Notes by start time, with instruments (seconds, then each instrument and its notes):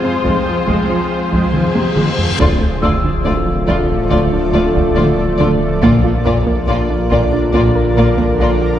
Already playing: ambient pad F3 C4 G#4 C5, french horn section G#3 C4, violin section F4 C5, felt piano G#5 G#6, reverse cymbal
0.03 cello section F2, viola section C3, synth arpeggio sound C4
0.24 double bass section F1, cello section F2, synth arpeggio sound F3, viola section G#3, taiko
0.46 cello section F2, viola section F3, synth arpeggio sound G#3
0.67 double bass section F1, cello section F2, synth arpeggio sound F3, viola section G#3, taiko
0.89 cello section F2, viola section F3, synth arpeggio sound C4
1.32 cello section F2, synth arpeggio sound F3, viola section G#3, taiko
1.53 double bass section F1, cello section F2, viola section F3, synth arpeggio sound G#3, taiko mid
1.74 cello section F2, viola section C3, synth arpeggio sound G#3, taiko high
1.95 double bass section F1, cello section F2, synth arpeggio sound F3, viola section G#3, taiko mid
2.16 cello section F2, viola section F3, synth arpeggio sound G#3, taiko low
2.38 detuned saw bass D1, double bass section D2, cello section D2, trombone section D3 A3, synth arpeggio sound D3, ambient pad F3 A3 A4 D5, viola section A3, french horn section D4 F4, violin section F4 D5, taiko, sub drop
2.61 synth arpeggio sound A3
2.81 double bass section D2, cello section D2, viola section A3, synth arpeggio sound D4, violin section F4 D5, felt piano E6, taiko low
3.04 synth arpeggio sound D3, taiko
3.24 double bass section D2, cello section D2, viola section A3, synth arpeggio sound A3, violin section F4 D5
3.47 synth arpeggio sound F3
3.66 double bass section D2, cello section D2, synth arpeggio sound D3, viola section A3, violin section F4 D5, taiko
3.90 synth arpeggio sound F3
4.10 double bass section D2, cello section D2, synth arpeggio sound D3, viola section A3, violin section F4 D5, taiko
4.33 synth arpeggio sound D4
4.53 cello section D2, double bass section D2, viola section A3, synth arpeggio sound D4, violin section F4 D5
4.75 synth arpeggio sound D3, taiko
4.96 double bass section D2, cello section D2, viola section A3, synth arpeggio sound A3, violin section F4 D5
5.19 synth arpeggio sound A3
5.38 double bass section D2, cello section D2, synth arpeggio sound D3, viola section A3, violin section F4 D5
5.81 double bass section A#1, detuned saw bass A#1, cello section A#2, trombone section D3 A#3, ambient pad F3 D4 A#4 D5, viola section A#3, synth arpeggio sound A#3, french horn section D4 F4, violin section F4 D5, taiko
6.04 synth arpeggio sound F4
6.25 double bass section A#1, cello section A#2, viola section A#3, violin section F4 D5, synth arpeggio sound A#4, taiko low
6.47 synth arpeggio sound A#3, taiko
6.68 double bass section A#1, cello section A#2, viola section A#3, synth arpeggio sound F4, violin section F4 D5
6.90 synth arpeggio sound D4
7.10 double bass section A#1, cello section A#2, viola section A#3, synth arpeggio sound A#3, violin section F4 D5, taiko
7.33 synth arpeggio sound D4
7.53 double bass section A#1, cello section A#2, viola section A#3, synth arpeggio sound A#3, violin section F4 D5, taiko
7.75 synth arpeggio sound A#4
7.96 double bass section A#1, cello section A#2, viola section A#3, violin section F4 D5, synth arpeggio sound A#4
8.18 synth arpeggio sound A#3, taiko
8.39 double bass section A#1, cello section A#2, viola section A#3, synth arpeggio sound F4, violin section F4 D5
8.62 synth arpeggio sound F4